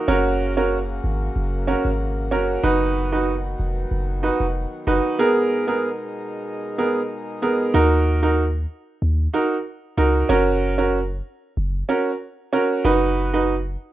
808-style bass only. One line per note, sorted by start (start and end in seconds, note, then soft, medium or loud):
0.08 1.00 F#1 loud
1.04 1.30 G#1 medium
1.36 1.76 F#1 loud
1.85 2.33 G#1 medium
2.32 2.58 F#1 medium
2.64 3.55 F#1 loud
3.60 3.85 F1 loud
3.91 4.31 F#1 loud
4.40 4.66 F1 medium
4.87 5.01 F#1 medium
7.74 8.66 D#2 loud
9.02 9.28 D#2 loud
9.98 10.24 C#2 medium
10.29 11.21 F#1 loud
11.57 11.83 F#1 loud
12.85 13.77 F#1 loud